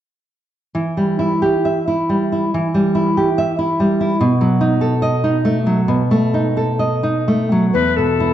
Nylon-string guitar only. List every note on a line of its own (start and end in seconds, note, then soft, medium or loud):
0.75 2.49 E3 soft
0.97 1.33 G3 soft
1.19 1.56 E4 soft
1.42 1.78 G4 soft
1.65 1.87 E5 soft
1.88 2.23 E4 soft
2.09 2.45 G3 soft
2.32 2.66 E4 soft
2.54 4.17 E3 soft
2.74 3.08 G3 soft
2.95 3.29 E4 soft
3.17 3.51 G4 soft
3.38 3.58 E5 soft
3.59 3.92 E4 soft
3.80 4.12 G3 soft
4.01 4.21 E4 soft
4.21 5.85 B2 soft
4.41 4.74 F#3 soft
4.61 4.94 D#4 soft
4.81 5.15 A4 soft
5.02 5.36 D#5 soft
5.24 5.58 D#4 soft
5.45 5.80 A3 soft
5.67 6.02 F#3 soft
5.88 7.70 B2 soft
6.11 6.47 A3 soft
6.34 6.70 D#4 soft
6.57 6.94 A4 soft
6.79 7.18 D#5 soft
7.03 7.42 D#4 soft
7.28 7.65 A3 soft
7.52 7.74 F#3 soft
7.75 8.34 E2 soft
7.98 8.33 B2 soft
8.20 8.34 E4 soft